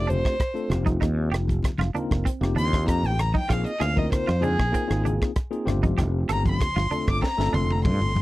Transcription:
Already playing: fretless electric bass F1, tine electric piano A3 C4 D4 F4 G4, violin D5
0.07 clean electric guitar D4, violin C5, closed hi-hat, low conga
0.25 kick, cross-stick, closed hi-hat
0.40 kick, cross-stick, closed hi-hat
0.54 tine electric piano A3 C4 D4 F4 A4, closed hi-hat
0.70 fretless electric bass F1, tine electric piano A#3 C4 D#4 F4 G4, cross-stick, closed hi-hat, low conga
0.86 clean electric guitar D#4, kick, closed hi-hat, high conga
1.01 fretless electric bass D#2, clean electric guitar D#4, kick, cross-stick, closed hi-hat
1.31 fretless electric bass F1, clean electric guitar G4, cross-stick, closed hi-hat
1.48 kick, closed hi-hat, high conga
1.63 kick, cross-stick, closed hi-hat, low conga
1.78 fretless electric bass F1, clean electric guitar F4, cross-stick, closed hi-hat, high conga
1.94 tine electric piano A#3 C4 D#4 F4 A#4, clean electric guitar D4, closed hi-hat, low conga
2.11 fretless electric bass F1, kick, cross-stick
2.25 clean electric guitar C4, kick, closed hi-hat
2.41 fretless electric bass F1, tine electric piano A#3 C4 D#4 F4 G4, cross-stick, closed hi-hat
2.55 fretless electric bass D#2, clean electric guitar D4, violin C6, closed hi-hat, low conga
2.73 kick, cross-stick, closed hi-hat
2.88 fretless electric bass F2, violin A#5, kick, cross-stick, closed hi-hat
3.03 fretless electric bass A1, violin G5, closed hi-hat
3.18 violin A#5, cross-stick, closed hi-hat, low conga
3.34 clean electric guitar D#4, kick, high conga
3.38 violin G5
3.48 fretless electric bass A#1, tine electric piano A#3 C4 D#4 F4 G#4, clean electric guitar F4, kick, cross-stick, closed hi-hat
3.52 violin F5
3.66 violin D#5, closed hi-hat
3.79 fretless electric bass D2, tine electric piano A#3 C4 D#4 F4 G#4, clean electric guitar G#4, violin F5, cross-stick, closed hi-hat
3.96 tine electric piano A#3 C4 D#4 F4 A#4, violin D#5, kick, high conga
4.12 violin C5, kick, cross-stick, closed hi-hat, low conga
4.27 fretless electric bass F2, clean electric guitar F4, cross-stick, closed hi-hat, high conga
4.41 tine electric piano A#3 C4 D#4 F4 G#4, clean electric guitar D4, violin G#4, closed hi-hat, low conga
4.59 fretless electric bass A#1, kick, cross-stick
4.72 tine electric piano A#3 C4 D#4 F4 A#4, clean electric guitar C4, kick, closed hi-hat
4.88 fretless electric bass G#1, tine electric piano A#3 C4 D#4 F4 G#4, cross-stick, closed hi-hat
5.05 clean electric guitar D4, closed hi-hat, low conga
5.22 kick, cross-stick, closed hi-hat
5.36 kick, cross-stick, closed hi-hat
5.51 tine electric piano A#3 C4 D#4 F4 G#4, closed hi-hat
5.65 fretless electric bass G1, tine electric piano A3 C4 D4 F4 G4, cross-stick, closed hi-hat, low conga
5.83 clean electric guitar D#4, kick, closed hi-hat, high conga
5.98 fretless electric bass F1, clean electric guitar G4, kick, cross-stick, closed hi-hat
6.29 fretless electric bass G1, clean electric guitar A4, violin A#5, cross-stick, closed hi-hat
6.45 violin C6, kick, closed hi-hat, high conga
6.60 kick, cross-stick, closed hi-hat, low conga
6.76 fretless electric bass G1, clean electric guitar F4, cross-stick, closed hi-hat, high conga
6.90 tine electric piano A3 C4 D4 F4 A4, clean electric guitar D4, muted fretless electric bass stroke, closed hi-hat, low conga
7.08 fretless electric bass G1, violin D6, kick, cross-stick
7.22 clean electric guitar C4, violin A#5, kick, snare
7.37 fretless electric bass G1, tine electric piano A3 C4 D4 F4 A4, snare
7.53 fretless electric bass F1, clean electric guitar D4, violin C6, high tom, low conga
7.70 violin A#5, high tom
7.85 fretless electric bass G2, violin C6, kick, mid tom
8.00 fretless electric bass G1, mid tom
8.15 floor tom, high conga, low conga

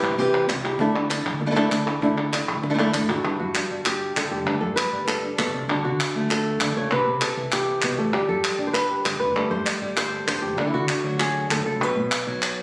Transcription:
Already playing: nylon-string guitar C3 E3 C4 E4 G4
0.02 fretless electric bass G2
0.10 fretless electric bass C2
0.18 nylon-string guitar C3 E3 C4 E4 G4
0.48 fretless electric bass C2, muted nylon-string guitar stroke, cajon slap, clap
0.64 nylon-string guitar C4 E4 G4
0.79 fretless electric bass D2, nylon-string guitar D3 A3 D4 E4 A4, cajon bass
0.94 nylon-string guitar D4 E4 A4, clap
1.10 nylon-string guitar D4 E4 A4, cajon slap, clap
1.25 fretless electric bass A1
1.33 fretless electric bass D2
1.41 muted nylon-string guitar stroke
1.46 nylon-string guitar A3 D4 E4 A4
1.51 nylon-string guitar A3 D4 E4 A4
1.55 nylon-string guitar D3 A3 D4 E4 A4
1.70 fretless electric bass D2, nylon-string guitar A3 D4 E4, cajon slap, clap
1.86 nylon-string guitar D4 E4 A4
2.02 fretless electric bass D2, nylon-string guitar D3 A3 D4 E4 A4, cajon bass
2.17 nylon-string guitar D4 E4 A4, clap
2.32 nylon-string guitar D4 E4 A4, cajon slap, clap
2.48 fretless electric bass A1
2.56 fretless electric bass D2
2.63 muted nylon-string guitar stroke, cajon slap
2.70 nylon-string guitar A3 D4 E4 A4
2.74 nylon-string guitar A3 D4 E4 A4
2.79 nylon-string guitar D3 A3 D4 E4 A4, cajon bass
2.94 fretless electric bass G#1, nylon-string guitar A3 D4 E4 A4, cajon bass, clap
3.09 nylon-string guitar D4 E4 F#4 A4, cajon bass, clap
3.23 fretless electric bass G1, nylon-string guitar G2 E4
3.39 fretless electric bass G2, nylon-string guitar F#4
3.55 nylon-string guitar D4, clap
3.71 fretless electric bass G1, nylon-string guitar G3
3.85 nylon-string guitar G4, clap
4.16 fretless electric bass G1, nylon-string guitar D3 A4, clap
4.31 fretless electric bass E1, nylon-string guitar G4
4.47 fretless electric bass G1, nylon-string guitar G2 A3 D4, clap
4.61 fretless electric bass G2, nylon-string guitar A4
4.76 nylon-string guitar B4, clap
4.92 fretless electric bass G1, nylon-string guitar G3
5.08 nylon-string guitar A4, clap
5.24 nylon-string guitar D4
5.38 fretless electric bass G1, nylon-string guitar B2 A4, clap
5.54 fretless electric bass C2, nylon-string guitar C3
5.69 fretless electric bass D2, nylon-string guitar D3 D4 F#4, clap
5.85 fretless electric bass D3, nylon-string guitar F#4
6.00 nylon-string guitar G#4, clap
6.16 fretless electric bass D2, nylon-string guitar A3
6.31 nylon-string guitar A4, clap
6.47 nylon-string guitar F#4
6.60 fretless electric bass D2, nylon-string guitar D3, clap
6.76 fretless electric bass C#2, nylon-string guitar C#3 C#5
6.91 fretless electric bass C2, nylon-string guitar C3 B4
7.06 fretless electric bass C3
7.21 nylon-string guitar A4, clap
7.37 fretless electric bass C2, nylon-string guitar E3
7.52 nylon-string guitar G4, clap
7.68 nylon-string guitar C4
7.82 fretless electric bass C2, nylon-string guitar B2, clap
7.98 fretless electric bass A1, nylon-string guitar A2 A4
8.13 fretless electric bass G1, nylon-string guitar G3 G4, clap
8.29 fretless electric bass G2, nylon-string guitar A4
8.44 clap
8.58 fretless electric bass G1, nylon-string guitar D4
8.67 nylon-string guitar C5
8.73 nylon-string guitar B4, clap
8.91 nylon-string guitar G4
9.05 fretless electric bass G1, nylon-string guitar D3 C5, clap
9.19 fretless electric bass E1, nylon-string guitar B4
9.35 fretless electric bass G1, nylon-string guitar G3 A3 A4, clap
9.50 fretless electric bass G2, nylon-string guitar C5
9.66 nylon-string guitar D5, clap
9.81 fretless electric bass G1, nylon-string guitar G3
9.97 nylon-string guitar C5, clap
10.13 nylon-string guitar A4
10.27 fretless electric bass G1, nylon-string guitar D3 C5, clap
10.42 fretless electric bass E1, nylon-string guitar G4
10.57 fretless electric bass D2, nylon-string guitar D3 D4 E4
10.67 nylon-string guitar E4
10.73 fretless electric bass D3, nylon-string guitar F#4
10.89 nylon-string guitar D4, clap
11.04 fretless electric bass D2, nylon-string guitar F#3
11.20 nylon-string guitar G#4, clap
11.50 fretless electric bass D2, nylon-string guitar A2 A4, clap
11.66 nylon-string guitar A4
11.81 fretless electric bass B1, nylon-string guitar B2 B4
11.96 fretless electric bass B2
12.11 clap
12.27 fretless electric bass B1, nylon-string guitar F#3
12.42 clap

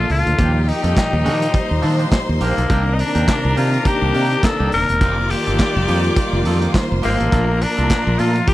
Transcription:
Already playing: string section A#2 A3 A#3 F4, violin section A4 A5
0.09 fingered electric bass C#2, tenor saxophone F4, muted clean electric guitar stroke, open hi-hat
0.26 fingered electric bass D2, muted clean electric guitar stroke, closed hi-hat
0.37 fingered electric bass D#2, clean electric guitar F3 A#3 D4 G4, string section F3 G3 D#4, violin section G4 G5, kick, closed hi-hat
0.55 muted clean electric guitar stroke
0.63 tenor saxophone F4, muted clean electric guitar stroke
0.68 tenor saxophone D#4, open hi-hat
0.83 fingered electric bass F2, clean electric guitar F3 A#3 D4 A4, closed hi-hat
0.96 kick, snare, clap, closed hi-hat
1.12 fingered electric bass D#2, muted clean electric guitar stroke
1.24 fingered electric bass D#3, clean electric guitar F3 A#3 D4 G4, open hi-hat
1.41 muted clean electric guitar stroke, closed hi-hat
1.53 violin section C5 C6, muted clean electric guitar stroke, kick, closed hi-hat
1.69 fingered electric bass D#2, muted clean electric guitar stroke
1.82 fingered electric bass D#3, clean electric guitar F3 A#3 D4 A4, open hi-hat
1.99 clean electric guitar F3 A#3 D4 G4, closed hi-hat
2.12 kick, snare, clap, closed hi-hat
2.28 fingered electric bass D#2, muted clean electric guitar stroke
2.40 fingered electric bass A#1, clean electric guitar F3 A#3 D4 G4, tenor saxophone A#3, open hi-hat
2.57 fingered electric bass B1, clean electric guitar F3 A#3 D4 A4, closed hi-hat
2.69 fingered electric bass C2, string section C3 D#3 A#3 D4, clean electric guitar D#3 A#3 D4 G4, violin section A#4 A#5, kick, closed hi-hat
2.85 muted clean electric guitar stroke
2.94 tenor saxophone D#4, muted clean electric guitar stroke
2.99 tenor saxophone D4, open hi-hat
3.15 fingered electric bass D#2, clean electric guitar D#3 A#3 D4 G4, closed hi-hat
3.27 kick, snare, clap, closed hi-hat
3.43 fingered electric bass C2, muted clean electric guitar stroke
3.56 fingered electric bass C3, clean electric guitar D#3 A#3 D4 G4, tenor saxophone F4, open hi-hat
3.72 muted clean electric guitar stroke, closed hi-hat
3.85 tenor saxophone G4, muted clean electric guitar stroke, kick, closed hi-hat
4.01 fingered electric bass C2, clean electric guitar D#3 A#3 D4 G4
4.14 fingered electric bass C3, clean electric guitar D#3 A#3 D4 G4, open hi-hat
4.31 muted clean electric guitar stroke, closed hi-hat
4.43 tenor saxophone A4, kick, snare, clap, closed hi-hat
4.60 fingered electric bass C2, clean electric guitar D#3 A#3 D4 G4
4.72 fingered electric bass D#1, tenor saxophone A#4, muted clean electric guitar stroke, open hi-hat
4.89 fingered electric bass E1, muted clean electric guitar stroke, closed hi-hat
5.01 fingered electric bass F1, string section D#3 G3 F4, clean electric guitar F3 A#3 D#4 G4, violin section D5 D6, kick, closed hi-hat
5.17 muted clean electric guitar stroke
5.30 tenor saxophone G4, muted clean electric guitar stroke, open hi-hat
5.46 fingered electric bass G1, clean electric guitar F3 A#3 D#4 A4, closed hi-hat
5.58 kick, snare, clap, closed hi-hat
5.75 fingered electric bass F1, muted clean electric guitar stroke
5.88 fingered electric bass F2, clean electric guitar F3 A#3 D#4 G4, open hi-hat
6.04 muted clean electric guitar stroke, closed hi-hat
6.16 muted clean electric guitar stroke, kick, closed hi-hat
6.33 fingered electric bass F1, muted clean electric guitar stroke
6.45 fingered electric bass F2, clean electric guitar F3 A#3 D#4 A4, open hi-hat
6.61 clean electric guitar F3 A#3 D#4 G4, closed hi-hat
6.74 violin section C5 C6, kick, snare, clap, closed hi-hat
6.91 fingered electric bass F1, muted clean electric guitar stroke
7.02 fingered electric bass G#1, clean electric guitar F3 A#3 D#4 G4, tenor saxophone A#3, open hi-hat
7.18 fingered electric bass A1, clean electric guitar F3 A#3 D#4 A4, closed hi-hat
7.32 fingered electric bass A#1, string section A#2 F3 F4, clean electric guitar A3 D4 F4 A4, violin section A#4 A#5, kick, closed hi-hat
7.48 muted clean electric guitar stroke
7.61 tenor saxophone D4, muted clean electric guitar stroke, open hi-hat
7.77 fingered electric bass C2, clean electric guitar A3 D4 F4 A4, closed hi-hat
7.89 kick, snare, clap, closed hi-hat
8.07 fingered electric bass A#1, muted clean electric guitar stroke
8.19 fingered electric bass A#2, clean electric guitar A3 D4 F4 A4, tenor saxophone F4, open hi-hat
8.35 muted clean electric guitar stroke, closed hi-hat
8.47 tenor saxophone G4, muted clean electric guitar stroke, kick, closed hi-hat

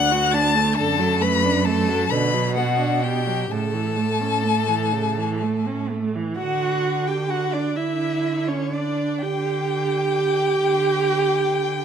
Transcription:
Already playing: cello D2, viola D4, violin F#5 F#6
0.11 viola F#4
0.32 viola D4, violin A5 A6
0.55 viola A3
0.75 cello F#2, viola D3, violin A4 A5
0.99 viola F#3
1.20 viola A3, violin B4 B5
1.43 viola D4
1.65 viola A3, violin A4 A5
1.89 viola F#3
2.10 cello B2, viola D3, violin B4 B5
2.34 viola F#3
2.56 viola B3, violin F#4 F#5
2.79 viola D4
3.04 viola B3, violin G4 G5
3.27 viola F#3
3.51 cello A2, viola C#3, violin A4 A5
3.73 viola E3
3.96 viola A3
4.22 viola C#4
4.45 viola A3
4.68 viola E3
4.93 viola C#3
5.18 viola E3
5.42 viola A3
5.67 viola C#4
5.90 viola A3
6.15 viola E3
6.37 cello D3, viola F#4, violin F#5
7.07 viola G4, violin G5
7.30 viola F#4, violin F#5
7.53 viola D4, violin D5
7.76 cello D3, viola E4, violin E5
8.48 viola C#4, violin C#5
8.73 viola D4, violin D5
9.22 cello D3, viola G4, violin G5
10.58 cello D3

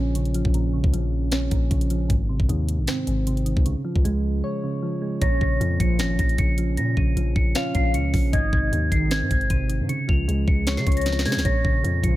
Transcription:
Already playing: 808-style bass A#1, synth keys A#2 C#3 F3 C#4
0.15 synth keys C#3, closed hi-hat
0.25 closed hi-hat
0.34 synth keys F3, closed hi-hat
0.45 808-style bass A#1, kick
0.54 synth keys A#2, closed hi-hat
0.73 synth keys C#3
0.84 808-style bass C#2, kick
0.93 808-style bass A#1, synth keys F3, closed hi-hat
1.32 synth keys C#4, finger snap, snare, closed hi-hat
1.51 808-style bass A#1, synth keys A#2, kick, closed hi-hat
1.70 808-style bass A#1, synth keys C#3, kick, closed hi-hat
1.81 closed hi-hat
1.90 synth keys F3, closed hi-hat
2.09 808-style bass G#1, synth keys G#2, kick, closed hi-hat
2.29 synth keys C3
2.40 808-style bass G#1, kick
2.49 808-style bass D#2, synth keys D#3, closed hi-hat
2.69 closed hi-hat
2.79 808-style bass A#1
2.87 synth keys C4, finger snap, snare, closed hi-hat
3.07 808-style bass G#1, synth keys G#2, closed hi-hat
3.27 synth keys C3, closed hi-hat
3.37 closed hi-hat
3.46 synth keys D#3, closed hi-hat
3.57 808-style bass C#2, kick
3.66 synth keys C#3, closed hi-hat
3.85 synth keys F3
3.96 808-style bass C#2, kick
4.05 808-style bass C#2, synth keys G#3, closed hi-hat
4.44 synth keys C#5
4.64 synth keys C#3
4.83 synth keys F3
5.02 synth keys G#3
5.21 808-style bass A#1, synth keys A#2, soft synth lead C#5, celesta A#6, kick, closed hi-hat
5.41 808-style bass A#1, synth keys C#3, celesta A#6, kick
5.60 808-style bass F2, synth keys F3, closed hi-hat
5.80 808-style bass A#1, analog polysynth C#2 A#2 F3, celesta C#7, kick, closed hi-hat
5.99 808-style bass G#1, synth keys C#4, celesta A#6, finger snap, snare, closed hi-hat
6.18 808-style bass A#1, synth keys A#2, celesta A#6, kick, closed hi-hat
6.29 closed hi-hat
6.38 808-style bass A#1, synth keys C#3, celesta C#7, kick, closed hi-hat
6.58 synth keys F3, closed hi-hat
6.77 808-style bass A#2, synth keys A#2, celesta A#6, closed hi-hat
6.97 808-style bass A#1, synth keys C#3, celesta D#7, kick
7.16 808-style bass A#1, synth keys F3, closed hi-hat
7.36 808-style bass A#1, celesta C#7, kick
7.55 synth keys C#4, soft synth lead F5, celesta F7, finger snap, snare, closed hi-hat
7.75 808-style bass A#1, synth keys A#2, celesta C7, kick, closed hi-hat
7.94 808-style bass C#2, synth keys C#3, celesta C#7, closed hi-hat
8.14 808-style bass A#1, synth keys F3, kick, open hi-hat
8.32 808-style bass G#1, synth keys G#2, soft synth lead D#5, celesta G#6, kick, closed hi-hat
8.53 808-style bass G#1, synth keys C3, celesta G#6, kick
8.72 808-style bass D#2, synth keys D#3, closed hi-hat
8.92 808-style bass G#1, analog polysynth C2 G#2 D#3, celesta C7, kick, closed hi-hat
9.11 synth keys C4, celesta G#6, finger snap, snare, closed hi-hat
9.22 808-style bass G#2
9.31 808-style bass G#1, synth keys G#2, celesta G#6, kick, closed hi-hat
9.41 closed hi-hat
9.50 808-style bass G#1, synth keys C3, celesta D#7, kick, closed hi-hat
9.69 synth keys D#3, closed hi-hat
9.80 808-style bass G#2
9.89 synth keys C#3, celesta C#7, closed hi-hat
10.08 808-style bass C#2, synth keys F3, celesta F7, kick
10.28 808-style bass C#2, synth keys G#3, closed hi-hat
10.48 808-style bass C#2, celesta C#7, kick
10.67 synth keys C#5, finger snap, snare, closed hi-hat
10.77 808-style bass C#3, celesta C7, snare
10.87 808-style bass C#2, synth keys C#3, soft synth lead C#5, kick, closed hi-hat
10.92 closed hi-hat
10.97 celesta A#6, closed hi-hat
11.01 closed hi-hat
11.06 synth keys F3, snare, closed hi-hat
11.13 snare
11.19 snare
11.25 808-style bass C#3, synth keys G#3, celesta G#6, snare, open hi-hat
11.32 808-style bass C#2, snare
11.39 snare
11.45 808-style bass A#1, synth keys A#2, soft synth lead C#5, celesta A#6, kick, closed hi-hat
11.65 808-style bass A#1, synth keys C#3, celesta A#6, kick
11.84 808-style bass F2, synth keys F3, closed hi-hat
12.03 808-style bass A#1, analog polysynth C#2 A#2 F3, celesta C#7, kick, closed hi-hat

